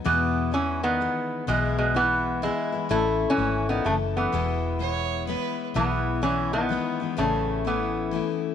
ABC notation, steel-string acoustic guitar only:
X:1
M:3/4
L:1/8
Q:"Swing" 1/4=126
K:E
V:1 name="Steel-string acoustic guitar"
[E,,B,,E,G,B,E]2 [E,G,B,E]2 [G,B,]2 | [E,,B,,E,G,B,E]2 [E,G,B,E]2 [E,G,B,E] [E,G,B,E] | [A,,E,A,CE]2 [E,A,CE]2 [E,A,CE]2 | [E,,B,,E,G,B,E]2 [E,G,B,E]2 [E,G,B,E]2 |
[E,,B,,E,G,B,E]2 [E,G,B,E]2 [E,G,B,E] [E,G,B,E] | [A,,E,A,CE]2 [E,A,CE]2 [E,A,CE]2 |]